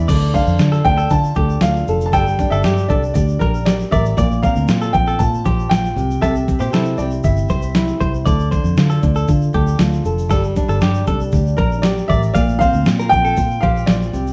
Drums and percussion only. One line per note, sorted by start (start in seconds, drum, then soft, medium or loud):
0.08 kick loud
0.08 crash medium
0.08 shaker medium
0.21 shaker soft
0.34 kick loud
0.34 shaker medium
0.46 shaker medium
0.59 snare loud
0.59 shaker medium
0.72 shaker medium
0.85 kick medium
0.85 shaker medium
0.98 shaker soft
1.10 kick medium
1.10 shaker medium
1.24 shaker soft
1.35 kick medium
1.35 shaker soft
1.50 shaker soft
1.61 snare loud
1.61 shaker medium
1.63 shaker medium
1.76 shaker soft
1.88 shaker soft
2.01 shaker soft
2.13 kick loud
2.13 shaker medium
2.27 shaker soft
2.39 kick medium
2.39 shaker soft
2.51 shaker medium
2.64 snare loud
2.64 shaker medium
2.77 shaker medium
2.90 kick medium
2.90 shaker medium
3.03 shaker soft
3.15 kick medium
3.15 shaker medium
3.28 shaker medium
3.41 kick medium
3.41 shaker medium
3.54 shaker medium
3.66 snare loud
3.66 shaker medium
3.80 shaker soft
3.92 kick loud
3.92 shaker soft
4.05 shaker soft
4.05 shaker medium
4.18 kick loud
4.18 shaker medium
4.31 shaker soft
4.43 kick loud
4.43 shaker medium
4.43 shaker soft
4.55 shaker medium
4.68 snare loud
4.68 shaker medium
4.81 shaker medium
4.94 kick medium
4.94 shaker medium
5.07 shaker soft
5.19 kick medium
5.19 shaker medium
5.34 shaker soft
5.46 kick medium
5.46 shaker medium
5.59 shaker soft
5.71 snare loud
5.71 shaker medium
5.84 shaker soft
5.97 shaker soft
6.11 shaker soft
6.11 shaker medium
6.22 kick loud
6.22 shaker medium
6.35 shaker soft
6.48 kick medium
6.48 shaker medium
6.59 shaker medium
6.61 shaker medium
6.73 snare loud
6.73 shaker medium
6.85 shaker medium
6.98 shaker soft
6.99 shaker medium
7.10 shaker soft
7.23 kick medium
7.23 shaker medium
7.36 shaker medium
7.49 kick loud
7.49 shaker soft
7.62 shaker medium
7.62 shaker soft
7.75 snare loud
7.75 shaker medium
7.87 shaker soft
8.01 kick loud
8.01 shaker soft
8.14 shaker soft
8.26 kick loud
8.26 shaker medium
8.39 shaker soft
8.52 kick loud
8.52 shaker soft
8.52 shaker medium
8.64 shaker medium
8.77 snare loud
8.77 shaker medium
8.90 shaker medium
9.03 kick medium
9.03 shaker medium
9.15 shaker soft
9.28 kick medium
9.28 shaker medium
9.41 shaker soft
9.54 kick medium
9.54 shaker medium
9.67 shaker medium
9.79 snare loud
9.79 shaker medium
9.93 shaker soft
10.05 shaker soft
10.18 shaker soft
10.30 kick loud
10.30 shaker medium
10.43 shaker soft
10.56 kick medium
10.56 shaker medium
10.56 shaker soft
10.68 shaker medium
10.81 snare loud
10.81 shaker medium
10.94 shaker medium
11.07 kick medium
11.07 shaker medium
11.20 shaker medium
11.32 kick medium
11.32 shaker medium
11.46 shaker soft
11.58 kick loud
11.58 shaker soft
11.72 shaker soft
11.83 snare loud
11.83 shaker medium
11.97 shaker soft
12.09 kick loud
12.09 shaker soft
12.23 shaker soft
12.35 kick loud
12.35 shaker medium
12.48 shaker soft
12.61 kick medium
12.61 shaker medium
12.73 shaker medium
12.86 snare loud
12.86 shaker medium
12.99 shaker medium
13.12 kick medium
13.12 shaker medium
13.25 shaker medium
13.37 kick medium
13.37 shaker medium
13.51 shaker medium
13.62 kick medium
13.62 shaker soft
13.77 shaker medium
13.87 snare loud
13.87 shaker medium
13.90 shaker medium
14.02 shaker soft
14.14 shaker soft
14.27 shaker medium
14.27 shaker soft